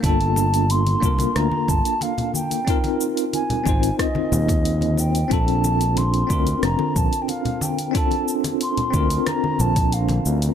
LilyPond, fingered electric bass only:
\new Staff \with { instrumentName = "Fingered electric bass" } { \clef bass \time 4/4 \key bes \major \tempo 4 = 91 g,,4. c,8 d,8 g,,8 r4 | r4. aes,,8 r8 ees,4. | bes,,4. d,8 f,,8 bes,,8 r4 | r4. d,8 r8 bes,,4 d,8 | }